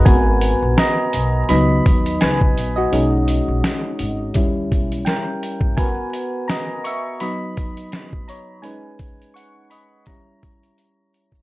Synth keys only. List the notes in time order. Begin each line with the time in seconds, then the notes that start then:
0.05 B3 F#4 A#4 B4 G#5
0.77 D#5 A#5
1.49 F#3 B3 D#4 D#5 B5
2.21 B4 G#5
2.76 F#4 D#5
2.92 G#3 C#4 D#4
4.35 G3 C#4 E4
5.05 A#4 G5
5.77 B3 F#4 A#4 B4 G#5
6.48 D#5 A#5
6.84 E5 C#6
7.21 F#3 B3 D#4 D#5 B5
8.28 C#5 A#5
8.62 G#3 C#4 D#4 B4 G#5
9.34 F#5 C#6
9.70 D#5 B5
10.07 G3 C#4 E4 C#5 A#5